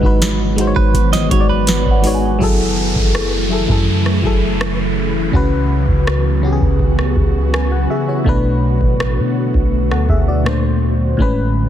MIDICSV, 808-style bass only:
0, 0, Header, 1, 2, 480
1, 0, Start_track
1, 0, Key_signature, 3, "minor"
1, 0, Tempo, 731707
1, 1580, Time_signature, 4, 2, 24, 8
1, 7669, End_track
2, 0, Start_track
2, 0, Title_t, "808-style bass"
2, 0, Program_c, 0, 38
2, 20, Note_on_c, 0, 32, 101
2, 481, Note_off_c, 0, 32, 0
2, 502, Note_on_c, 0, 32, 98
2, 847, Note_off_c, 0, 32, 0
2, 860, Note_on_c, 0, 32, 106
2, 1206, Note_off_c, 0, 32, 0
2, 1222, Note_on_c, 0, 32, 103
2, 1567, Note_off_c, 0, 32, 0
2, 1583, Note_on_c, 0, 30, 105
2, 1927, Note_off_c, 0, 30, 0
2, 1941, Note_on_c, 0, 30, 98
2, 2401, Note_off_c, 0, 30, 0
2, 2422, Note_on_c, 0, 42, 95
2, 2767, Note_off_c, 0, 42, 0
2, 2780, Note_on_c, 0, 30, 96
2, 3474, Note_off_c, 0, 30, 0
2, 3501, Note_on_c, 0, 37, 107
2, 3846, Note_off_c, 0, 37, 0
2, 3859, Note_on_c, 0, 37, 101
2, 4321, Note_off_c, 0, 37, 0
2, 4342, Note_on_c, 0, 37, 94
2, 4687, Note_off_c, 0, 37, 0
2, 4700, Note_on_c, 0, 37, 97
2, 5161, Note_off_c, 0, 37, 0
2, 5422, Note_on_c, 0, 35, 108
2, 5767, Note_off_c, 0, 35, 0
2, 5781, Note_on_c, 0, 33, 107
2, 6023, Note_on_c, 0, 47, 88
2, 6033, Note_off_c, 0, 33, 0
2, 6250, Note_off_c, 0, 47, 0
2, 6263, Note_on_c, 0, 35, 98
2, 6503, Note_on_c, 0, 38, 97
2, 6513, Note_off_c, 0, 35, 0
2, 6616, Note_off_c, 0, 38, 0
2, 6620, Note_on_c, 0, 38, 99
2, 7314, Note_off_c, 0, 38, 0
2, 7342, Note_on_c, 0, 33, 103
2, 7669, Note_off_c, 0, 33, 0
2, 7669, End_track
0, 0, End_of_file